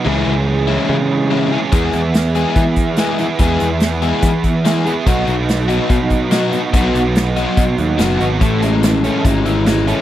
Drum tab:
HH |--------|xxxxxxxx|xxxxxxxx|xxxxxxxx|
SD |--------|--o---o-|--o---o-|--o---o-|
BD |--------|o---oo--|o---oo--|o---oo--|

HH |xxxxxxxx|xxxxxxxx|
SD |--o---o-|--o---o-|
BD |o---o---|o---o---|